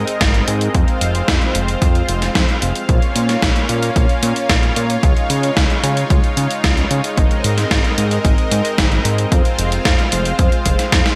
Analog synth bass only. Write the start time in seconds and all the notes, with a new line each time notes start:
0.21 G#1
0.48 G#2
0.75 F2
1.01 F1
1.28 F2
1.55 F1
1.82 F2
2.08 F1
2.35 F2
2.62 F1
2.89 A#1
3.16 A#2
3.42 A#1
3.69 A#2
3.96 A#1
4.23 A#2
4.50 A#1
4.76 A#2
5.03 C#2
5.30 C#3
5.57 C#2
5.83 C#3
6.10 C#2
6.37 C#3
6.64 C#2
6.91 C#3
7.18 G#1
7.44 G#2
7.71 G#1
7.98 G#2
8.25 G#1
8.51 G#2
8.78 G#1
9.05 G#2
9.32 F2
9.59 F1
9.85 F2
10.12 F1
10.39 F2
10.66 F1
10.92 F2